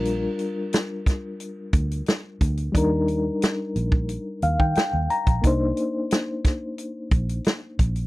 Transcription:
<<
  \new Staff \with { instrumentName = "Reed electric piano" } { \time 4/4 \key c \minor \tempo 4 = 89 << { r1 | r2 r8 f''16 g''16 g''8 bes''8 | r1 | } \\ { <g d' f' bes'>2.~ <g d' f' bes'>8 r8 | <g d' ees' bes'>1 | <bes d' ees' c''>1 | } >> }
  \new Staff \with { instrumentName = "Fingered electric bass" } { \clef bass \time 4/4 \key c \minor bes,,8 r2 d,8 r8 d,8 | ees,4 r8 bes,,8. r16 ees,16 ees16 r16 ees,16 r16 bes,,16 | c,8 r2 bes,,8 r8 bes,,8 | }
  \new DrumStaff \with { instrumentName = "Drums" } \drummode { \time 4/4 hh8 hh8 <hh sn>8 <hh bd sn>8 hh8 <hh bd>16 hh16 <hh sn>8 <hh bd>16 hh16 | <hh bd>8 hh8 <hh sn>8 hh16 bd16 hh8 hh16 bd16 <hh sn>8 hh16 <hh bd>16 | <hh bd>8 hh8 <hh sn>8 <hh bd sn>8 hh8 <hh bd>16 hh16 <hh sn>8 <hh bd>16 hh16 | }
>>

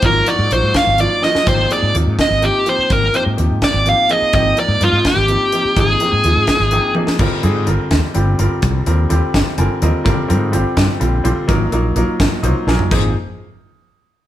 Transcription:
<<
  \new Staff \with { instrumentName = "Lead electric guitar" } { \time 6/8 \key aes \lydian \tempo 4. = 84 bes'8 d''8 c''8 f''8 d''8 ees''8 | c''8 d''8 r8 ees''8 g'8 c''8 | bes'8 c''8 r8 d''8 f''8 ees''8 | ees''8 d''8 f'8 g'4. |
aes'2~ aes'8 r8 | r2. | r2. | r2. |
r2. | r2. | }
  \new Staff \with { instrumentName = "Grand piano" } { \time 6/8 \key aes \lydian <f ges bes ees' f'>8 <f ges bes ees' ges'>8 <ges bes ees' f' ges'>4 <f ges bes ees' f'>8 <f ges bes ees' f'>8 | <c f bes ees' g'>8 <c f bes ees' aes'>8 <c f bes ees' f'>4 <c f bes ees' g'>8 <c f bes ees' g'>8~ | <c f bes ees' g'>8 <c f bes ees' g'>8 <c f bes ees' g'>4 <c f bes ees' g'>8 <c f bes ees' aes'>8 | <c f bes ees' g'>8 <c f bes ees' bes'>8 <c f bes ees' bes'>4 <c f bes ees' g'>8 <c f bes ees' g'>8 |
<c f bes ees' aes'>8 <c f bes ees' g'>8 <c f bes ees' f'>4 <c f bes ees' g'>8 <c f bes ees' aes'>8 | <d g c' f' bes'>8 <d g c' f' aes'>8 <d g c' f' bes'>4 <d g c' f' g'>8 <d g c' f' bes'>8~ | <d g c' f' bes'>8 <d g c' f' bes'>8 <d g c' f' g'>4 <d g c' f' bes' aes''>8 <d g c' f' bes' ees''>8 | <d g c' f' bes'>8 <d g c' f' bes'>8 <d g c' f' g'>4 <d g c' f' g'>8 <d g c' f' c''>8 |
<ges bes ees' f' bes'>8 <ges bes ees' f' bes'>8 <ges bes ees' f' bes'>4 <ges bes ees' f' c'' ees''>8 <ges bes ees' f' bes' aes''>8 | <f bes ees' aes' c''>8 r2 r8 | }
  \new Staff \with { instrumentName = "Fretless electric bass" } { \clef bass \time 6/8 \key aes \lydian aes,,8 r16 aes,16 bes,,16 aes,16 r16 aes,,8 r8. | aes,,8 r16 aes,16 ees,16 aes,16 r16 aes,,8 r8. | aes,,8 r16 aes,16 ees,16 aes,16 r16 aes,,8 r8. | aes,,8 r16 aes,16 g,16 aes,16 r16 aes,,8 r8. |
aes,,8 r16 aes,16 ees,16 aes,16 r16 aes,,8 r8. | aes,,16 r16 aes,8 aes,,16 r16 ees,16 r16 g,,8 g,,16 r16 | c,8 ees,8 ees,16 r16 aes,,16 r16 g,,16 r16 ees,16 r16 | aes,,16 r16 aes,8 aes,,16 r16 g,16 r16 bes,,8 bes,,16 r16 |
aes,,8 bes,,8 bes,,16 r16 aes,,16 r16 c,16 r16 bes,,16 r16 | aes,,8 r2 r8 | }
  \new DrumStaff \with { instrumentName = "Drums" } \drummode { \time 6/8 <hh bd>8 hh8 hh8 <hh bd sn>8 hh8 sn16 sn16 | <cymc hh bd>8 hh8 hh8 <hh bd sn>8 hh8 hh8 | <hh bd>8 hh8 hh8 <hh bd sn>8 hh8 hh8 | <hh bd>8 hh8 hh8 <hh bd sn>8 hh8 hh8 |
<hh bd>8 hh8 hh8 <hh bd sn>8 hh8 tommh16 sn16 | <cymc bd>8 hh8 hh8 <hh bd sn>8 hh8 hh8 | <hh bd>8 hh8 hh8 <hh bd sn>8 hh8 hh8 | <hh bd>8 hh8 hh8 <hh bd sn>8 hh8 hh8 |
<hh bd>8 hh8 hh8 <hh bd sn>8 hh8 sn16 tomfh16 | <cymc bd>4. r4. | }
>>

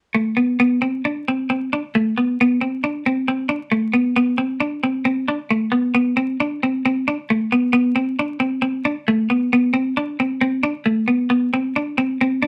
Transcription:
\new Staff \with { instrumentName = "Clean electric guitar" } { \time 4/4 \key a \dorian \tempo 4 = 134 r16 a8 b8 b8 c'8 d'8 c'8 c'8 d'16 | r16 a8 b8 b8 c'8 d'8 c'8 c'8 d'16 | r16 a8 b8 b8 c'8 d'8 c'8 c'8 d'16 | r16 a8 b8 b8 c'8 d'8 c'8 c'8 d'16 |
r16 a8 b8 b8 c'8 d'8 c'8 c'8 d'16 | r16 a8 b8 b8 c'8 d'8 c'8 c'8 d'16 | r16 a8 b8 b8 c'8 d'8 c'8 c'8 d'16 | }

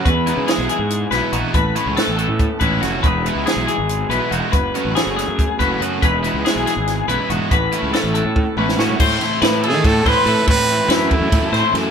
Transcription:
<<
  \new Staff \with { instrumentName = "Clean electric guitar" } { \time 7/8 \key a \lydian \tempo 4 = 141 b'4 gis'8 gis'4 b'8 fis'8 | b'4 a'8 a'4 b'8 fis'8 | b'4 gis'8 gis'4 b'8 fis'8 | b'4 gis'8 gis'4 b'8 fis'8 |
b'4 gis'8 gis'4 b'8 fis'8 | b'4 a'8 a'4 b'8 fis'8 | c''4 b'8 a'4 c''8 a'8 | c'4 b'8 a'4 c''8 a'8 | }
  \new Staff \with { instrumentName = "Trumpet" } { \time 7/8 \key a \lydian r2. r8 | r2. r8 | r2. r8 | r2. r8 |
r2. r8 | r2. r8 | r4. gis'8 a'8 b'4 | b'4 e'2 r8 | }
  \new Staff \with { instrumentName = "Overdriven electric guitar" } { \time 7/8 \key a \lydian r8 <e gis b e'>8 <e gis b e'>8 r4 <e gis b e'>8 <e gis b e'>8 | r8 <e a cis' e'>8 <e a cis' e'>8 r4 <e a cis' e'>8 <e a cis' e'>8 | r8 <e gis b e'>8 <e gis b e'>8 r4 <e gis b e'>8 <e gis b e'>8 | r8 <fis a cis' fis'>8 <fis a cis' fis'>8 r4 <fis a cis' fis'>8 <fis a cis' fis'>8 |
r8 <e gis b e'>8 <e gis b e'>8 r4 <e gis b e'>8 <e gis b e'>8 | r8 <e a cis' e'>8 <e a cis' e'>8 r4 <e a cis' e'>8 <e a cis' e'>8 | <a, e a c' e'>8 <a c' e'>8 <a, e a c' e'>8 <a c' e'>8 <e a c' e'>8 <a, e a c' e'>8 <e a c' e'>8 | <a, e a c' e'>8 <a c' e'>8 <a, e a c' e'>8 <a c' e'>8 <e a c' e'>8 <a, e a c' e'>8 <e a c' e'>8 | }
  \new Staff \with { instrumentName = "Clean electric guitar" } { \clef bass \time 7/8 \key a \lydian << { b8 dis'8 gis2 dis'8 | r8 b16 cis'16 b2~ b8 | <e gis dis' gis'>8 dis'8 gis2 dis'8 | r8 b8 a2 b8 |
<e gis dis' gis'>8 dis'8 gis2~ gis8 | <e b cis' fis'>8 b16 cis'16 b2 cis'8 | r2. r8 | r2. r8 | } \\ { e,4. e4 b,4 | a,4. e8 a,8 gis,8 fis,8 | e,4. e4 b,4 | fis,4. fis4 cis4 |
e,4. e8 e,8 fis,8 gis,8 | a,4. e4 e,4 | r2. r8 | r2. r8 | } >> }
  \new Staff \with { instrumentName = "Fingered electric bass" } { \clef bass \time 7/8 \key a \lydian e,8. cis16 r16 b,,16 r16 gis,8. b,,16 r16 ais,,16 r16 | a,,8 r16 cis,16 r16 a,,8 a,8 r16 a,,8 f,,8 | e,,8. cis,16 r16 b,,16 r16 gis,,8. b,,16 r16 e,,16 r16 | fis,,8 r16 a,,16 r16 fis,,8 fis,8 r16 fis,,8 fis,8 |
e,,8. cis,16 r16 b,,16 r16 gis,,8. b,,16 r16 e,,16 r16 | a,,8 r16 cis,16 r16 a,,8 a,8 r16 a,,8 a,8 | a,8 r8 a,8. dis16 a,8 a,16 r16 a,16 r16 | a,4 fis,8. fis,16 a,16 fis,16 a,16 r16 fis,8 | }
  \new DrumStaff \with { instrumentName = "Drums" } \drummode { \time 7/8 <hh bd>8 hh8 <hh sn>8 hh8 hh8 <hh sn>8 hh8 | <hh bd>8 hh8 <hh sn>8 hh8 <hh bd>8 <hh bd>8 <hh sn>8 | <hh bd>8 hh8 <hh sn>8 hh8 hh8 hh8 hh8 | <hh bd>8 hh8 <hh sn>8 <hh sn>8 <hh bd>8 <hh bd>8 hh8 |
<hh bd>8 hh8 <hh sn>8 <hh sn>8 <hh sn>8 hh8 hh8 | <hh bd>8 hh8 <hh sn>8 hh8 <bd tommh>8 toml16 sn16 sn16 tomfh16 | <cymc bd>8 <cymr sn>8 <cymr sn>8 cymr8 <bd cymr sn>8 <bd cymr sn>8 cymr8 | <bd cymr>8 cymr8 <cymr sn>8 <bd cymr>8 <bd cymr sn>8 <cymr sn>8 <cymr sn>8 | }
>>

